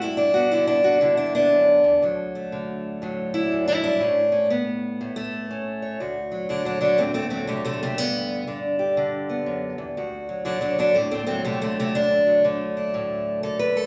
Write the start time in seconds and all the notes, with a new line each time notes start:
0.02 G2 E4
0.17 D4
0.34 B3 F#4
0.51 D3 E4
0.67 D4
0.84 F#4
1.01 D3 E4
1.17 D4
1.35 B3 D4
1.52 F#2
1.84 E2
2.02 D2 F#3
2.35 A3
2.52 D3
3.02 A2 F#3
3.34 D4 E4
3.52 F#2
3.68 E4
3.83 G2 D4
4.00 A2 C#4
4.32 C#4
4.50 B3
5.01 A2
5.16 A3
5.51 C#4
5.82 C#5
6.00 D2 F#4
6.32 F#3
6.49 D3 F#3 D4
6.65 F#3 D4
6.81 D3 F#3 D4
6.98 A2 A3 C4
7.14 A3 C4
7.30 F#3 A3 C4
7.47 C3 D3 A3
7.65 C3 A3
7.83 C3 A3
7.98 G2 B3
8.47 D3 D4
8.79 G4
8.97 D3
9.29 B3
9.46 F#2
9.78 E2
9.97 D2 F#4
10.29 F#3
10.45 D3 F#3 D4
10.61 F#3 D4
10.78 D3 F#3 D4
10.94 A2 A3 C4
11.11 A3 C4
11.27 F#3 A3 C4
11.45 C3 D3 A3
11.61 C3 A3
11.80 C3 A3
11.95 D2 D4
12.27 F#3
12.44 D3 A3
12.77 D4
12.94 A2
13.43 D3 A4
13.59 B4
13.76 A3 A4